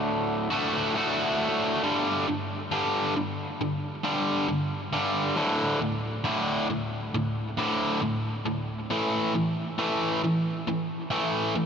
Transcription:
0.00 0.48 D2 medium
0.00 0.48 A2 medium
0.00 0.48 D3 medium
0.00 0.49 A3 medium
0.00 0.49 F#4 medium
0.50 0.94 D2 medium
0.50 0.93 A2 medium
0.50 0.93 D3 medium
0.50 0.93 A3 medium
0.50 0.92 F#4 medium
0.95 1.81 D2 medium
0.95 1.81 A2 medium
0.95 1.82 D3 medium
0.95 1.82 A3 medium
0.95 1.82 F#4 medium
1.83 2.25 G2 medium
1.83 2.25 D3 medium
1.83 2.26 G3 medium
2.27 2.67 G2 medium
2.27 2.67 D3 medium
2.71 3.13 G2 medium
2.71 3.13 D3 medium
2.71 3.14 G3 medium
3.16 3.56 G2 medium
3.16 3.56 D3 medium
3.61 4.00 G2 medium
3.61 4.00 D3 medium
4.04 4.46 G2 medium
4.04 4.46 D3 medium
4.04 4.46 G3 medium
4.48 4.88 G2 medium
4.48 4.89 D3 medium
4.93 5.34 G2 medium
4.93 5.35 D3 medium
4.93 5.35 G3 medium
5.36 5.78 D2 medium
5.36 5.79 A2 medium
5.36 5.79 D3 medium
5.81 6.21 D2 medium
5.81 6.21 A2 medium
6.24 6.66 D2 medium
6.24 6.67 A2 medium
6.24 6.67 D3 medium
6.70 7.10 D2 medium
6.70 7.10 A2 medium
7.14 7.54 D2 medium
7.14 7.54 A2 medium
7.58 7.99 D2 medium
7.58 8.00 A2 medium
7.58 8.00 D3 medium
8.02 8.42 D2 medium
8.02 8.42 A2 medium
8.45 8.86 D2 medium
8.45 8.86 A2 medium
8.90 9.32 A2 medium
8.90 9.32 E3 medium
8.90 9.33 A3 medium
9.34 9.74 A2 medium
9.34 9.75 E3 medium
9.78 10.20 A2 medium
9.78 10.20 E3 medium
9.78 10.20 A3 medium
10.24 10.63 A2 medium
10.24 10.63 E3 medium
10.67 11.07 A2 medium
10.67 11.08 E3 medium
11.10 11.53 A2 medium
11.10 11.53 E3 loud
11.10 11.53 A3 loud
11.56 11.66 A2 medium
11.56 11.66 E3 medium

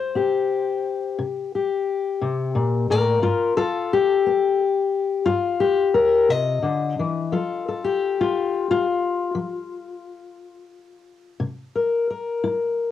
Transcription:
0.00 1.19 C5 medium
0.15 0.77 C4 medium
0.15 1.52 G4 soft
1.18 1.79 C3 medium
1.55 2.92 G4 soft
2.21 2.55 C3 medium
2.55 2.88 A#2 medium
2.90 3.22 A2 medium
2.90 3.22 A#4 medium
2.90 3.24 D5 medium
3.22 3.83 G2 medium
3.22 3.56 F4 medium
3.22 3.56 A#4 medium
3.57 3.91 F4 medium
3.57 4.59 A4 loud
3.93 5.28 G4 medium
4.26 4.86 B3 medium
5.26 5.87 G2 medium
5.26 6.28 F4 medium
5.60 6.30 G4 medium
5.94 6.28 A#4 loud
6.29 6.62 C3 medium
6.29 7.83 D#5 medium
6.63 6.97 D3 medium
6.99 7.32 E3 medium
7.32 7.93 F3 medium
7.32 8.17 F4 medium
7.32 7.66 A4 soft
7.68 11.38 A4 soft
7.84 8.85 G4 medium
8.20 8.69 F4 medium
8.71 11.42 F4 medium
9.35 9.97 F3 medium
11.40 12.02 C3 medium
11.76 12.10 A#4 medium
12.10 12.91 A#4 soft
12.44 12.91 E4 medium

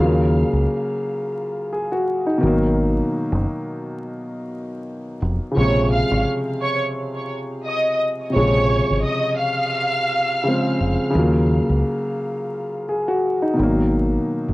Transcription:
0.00 0.43 D#2 loud
0.00 2.36 C#3 medium
0.00 2.39 F#3 medium
0.00 2.41 A#3 medium
0.00 2.38 F4 medium
0.53 0.65 C#2 medium
1.73 1.91 G#4 medium
1.92 2.25 F#4 medium
2.26 2.60 D#4 medium
2.38 5.15 B2 medium
2.38 5.17 D#3 medium
2.43 3.00 G#1 loud
2.43 5.18 F#3 medium
2.43 5.20 A#3 medium
3.32 3.45 F#1 medium
5.22 5.38 F1 medium
5.51 8.29 C#3 medium
5.51 8.30 F3 medium
5.57 6.01 A#1 loud
5.57 8.28 C3 medium
5.57 8.32 G#3 medium
5.57 5.88 C#5 medium
5.57 5.89 C#6 medium
5.92 6.23 F5 medium
5.92 6.24 F6 medium
6.11 6.24 G#1 medium
6.61 6.79 C#5 medium
6.61 6.79 C#6 medium
7.66 7.97 D#5 medium
7.66 7.98 D#6 medium
8.30 8.38 C3 medium
8.30 10.39 F3 medium
8.35 8.80 A#1 loud
8.35 10.41 C#3 medium
8.35 10.41 G#3 medium
8.35 9.01 C#5 loud
8.35 9.01 C#6 medium
8.39 10.43 C3 medium
8.90 9.03 G#1 medium
9.05 9.37 D#5 medium
9.05 9.37 D#6 medium
9.40 11.10 F5 medium
9.40 11.11 F6 medium
10.43 11.09 C#3 medium
10.43 11.14 F3 medium
10.43 11.15 G#3 medium
10.48 11.16 C4 medium
10.80 10.96 F1 medium
11.10 13.53 C#3 medium
11.10 13.54 F4 medium
11.15 11.59 D#2 loud
11.15 13.56 F#3 medium
11.20 13.57 A#3 medium
11.69 11.82 C#2 medium
12.89 13.07 G#4 medium
13.08 13.41 F#4 medium
13.42 13.76 D#4 medium
13.54 14.54 B2 medium
13.54 14.54 D#3 medium
13.59 14.16 G#1 loud
13.59 14.54 F#3 medium
13.59 14.54 A#3 medium
14.48 14.54 F#1 medium

